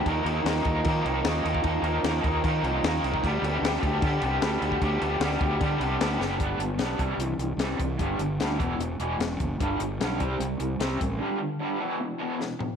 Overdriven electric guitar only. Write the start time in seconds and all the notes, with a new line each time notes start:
0.05 D#3 F3 A#3 D#4 A#4
0.24 D#3 F3 A#3 D#4 A#4
0.45 D#3 F3 A#3 D#4 A#4
0.66 D#3 F3 A#3 D#4 A#4
0.86 D#3 F3 A#3 D#4 A#4
1.06 D#3 F3 A#3 D#4 A#4
1.24 D#3 F3 A#3 D#4 A#4
1.43 D#3 F3 A#3 D#4 A#4
1.63 D#3 F3 A#3 D#4 A#4
1.83 D#3 F3 A#3 D#4 A#4
2.04 D#3 F3 A#3 D#4 A#4
2.24 D#3 F3 A#3 D#4 A#4
2.44 D#3 F3 A#3 D#4 A#4
2.64 D#3 F3 A#3 D#4 A#4
2.84 D#3 F3 A#3 D#4 A#4
3.04 D#3 F3 A#3 D#4 A#4
3.24 D3 G3 B3 G4
3.45 D3 G3 B3 G4
3.62 D3 G3 B3 G4
3.82 D3 G3 B3 G4
4.01 D3 G3 B3 G4
4.23 D3 G3 B3 G4
4.42 D3 G3 B3 G4
4.61 D3 G3 B3 G4
4.81 D3 G3 B3 G4
5.01 D3 G3 B3 G4
5.21 D3 G3 B3 G4
5.42 D3 G3 B3 G4
5.61 D3 G3 B3 G4
5.81 D3 G3 B3 G4
6.00 D3 G3 B3 G4
6.21 D3 G3 B3 G4
6.42 G3 B3 D4
6.60 G3 B3
6.79 G3 B3 D4
6.99 C3 E3 G3
7.19 C3 E3
7.39 C3 E3
7.59 C3 E3 G3
7.78 C3 E3
7.98 G2 D3 G3
8.18 G2 D3
8.40 G2 D3 G3
8.58 E2 B2 E3
8.80 E2 B2
9.00 E2 B2 E3
9.19 E2 B2
9.40 E2 B2
9.60 G2 D3 G3
9.80 G2 D3
10.01 G2 D3 G3
10.19 C3 G3 C4
10.40 C3 G3
10.60 C3 G3
10.80 C3 G3 C4
10.99 C3 G3
11.19 G2 D3 G3
11.39 G2 D3
11.60 G2 D3 G3
11.80 E2 B2 E3
12.00 E2 B2
12.18 E2 B2 E3
12.39 E2 B2
12.59 E2 B2